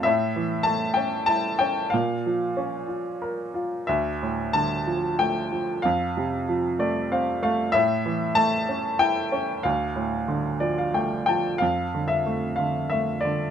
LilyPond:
<<
  \new Staff \with { instrumentName = "Upright piano" } { \time 3/4 \key d \minor \tempo 4 = 93 << { e''4 a''8 g''8 a''8 g''8 | f''4 r2 | e''4 a''4 g''4 | f''2~ f''8 r8 |
e''4 a''4 g''4 | f''2 r8 g''8 | \key f \major f''8. e''8. f''8 e''8 d''8 | } \\ { r2. | r2. | r2. | r4. d''8 f''8 f''8 |
r2. | r4. d''16 f''16 g''8 a''8 | r2. | } >> }
  \new Staff \with { instrumentName = "Upright piano" } { \clef bass \time 3/4 \key d \minor a,8 e8 a8 cis'8 e'8 cis'8 | bes,8 f8 des'8 f'8 bes'8 f'8 | d,8 a,8 d8 f8 a8 f8 | f,8 c8 f8 a8 c'8 a8 |
a,8 e8 a8 cis'8 e'8 cis'8 | d,8 a,8 d8 f8 a8 f8 | \key f \major f,8 d8 a8 d8 a8 d8 | }
>>